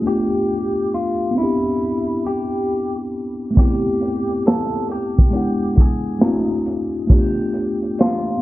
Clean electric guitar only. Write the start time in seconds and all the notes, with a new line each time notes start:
0.07 G4
0.94 F4
1.38 E4
2.27 G4
3.59 G4
4.47 A4
4.92 G4
5.80 G#4
7.13 G4
8.01 F4